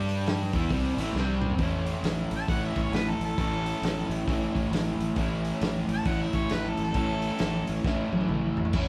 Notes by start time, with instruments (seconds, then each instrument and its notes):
Already playing: fingered electric bass G2, overdriven electric guitar G3 D4 G4
0.09 open hi-hat
0.26 snare, open hi-hat
0.53 fingered electric bass E2, overdriven electric guitar E3 B3 E4, kick, open hi-hat
0.70 fingered electric bass C2, overdriven electric guitar C3 G3 C4, kick, open hi-hat
0.97 fingered electric bass A1, overdriven electric guitar A2 E3 A3, open hi-hat
1.15 fingered electric bass C2, overdriven electric guitar C3 G3, snare
1.19 overdriven electric guitar C4
1.42 mid tom
1.50 floor tom
1.58 fingered electric bass A1, overdriven electric guitar A2 E3 A3, kick, open hi-hat
1.63 overdriven electric guitar C#4 E4
1.86 open hi-hat
2.03 fingered electric bass A1, snare, open hi-hat
2.31 fingered electric bass A1, open hi-hat
2.37 harmonica A5
2.48 fingered electric bass A1, overdriven electric guitar A2 E3 A3 C#4 E4, harmonica F#5, kick, open hi-hat
2.65 harmonica E5
2.76 fingered electric bass A1, kick, open hi-hat
2.83 harmonica C#5
2.92 fingered electric bass A1, harmonica B4, snare, open hi-hat
3.09 harmonica A4
3.19 fingered electric bass A1, open hi-hat
3.24 harmonica A4
3.38 fingered electric bass A1, overdriven electric guitar A2 E3 A3 C#4 E4, kick, open hi-hat
3.66 open hi-hat
3.82 fingered electric bass A1, snare, open hi-hat
4.09 fingered electric bass A1, open hi-hat
4.27 fingered electric bass A1, overdriven electric guitar A2 E3 A3 C#4 E4, kick, open hi-hat
4.55 fingered electric bass A1, kick, open hi-hat
4.71 fingered electric bass A1, snare, open hi-hat
4.99 fingered electric bass A1, open hi-hat
5.16 fingered electric bass A1, overdriven electric guitar A2 E3 A3 C#4 E4, kick, open hi-hat
5.45 open hi-hat
5.61 fingered electric bass A1, snare, open hi-hat
5.88 fingered electric bass A1, open hi-hat
5.94 harmonica A5
6.05 fingered electric bass A1, overdriven electric guitar A2 E3 A3 C#4 E4, harmonica F#5, kick, open hi-hat
6.22 harmonica E5
6.33 fingered electric bass A1, harmonica C#5, kick, open hi-hat
6.50 fingered electric bass A1, harmonica B4, snare, open hi-hat
6.69 harmonica A4
6.77 fingered electric bass A1, open hi-hat
6.84 harmonica A4
6.94 fingered electric bass A1, overdriven electric guitar A2 E3 A3 C#4 E4, kick, open hi-hat
7.22 open hi-hat
7.39 fingered electric bass A1, snare, open hi-hat
7.67 fingered electric bass A1, open hi-hat
7.84 fingered electric bass A1, overdriven electric guitar A2 E3 A3 C#4 E4, kick, snare
8.12 fingered electric bass A1, high tom
8.21 high tom
8.29 fingered electric bass A1, mid tom
8.57 fingered electric bass A1, floor tom
8.65 floor tom
8.73 fingered electric bass A1, overdriven electric guitar A2 E3 A3 C#4 E4, kick, crash